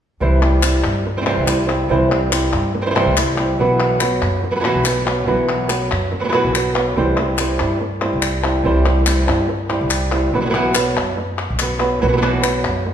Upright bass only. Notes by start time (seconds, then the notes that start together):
0.21 C2
0.85 G2
1.37 C2
1.90 C2
2.54 G2
3.06 C2
3.59 B1
4.22 F#2
4.75 B1
5.27 B1
5.92 F#2
6.45 B1
6.97 C2
7.61 G2
8.13 C2
8.66 C2
9.29 G2
9.81 C2
10.34 B1
10.97 F#2
11.50 B1
12.03 B1
12.65 F#2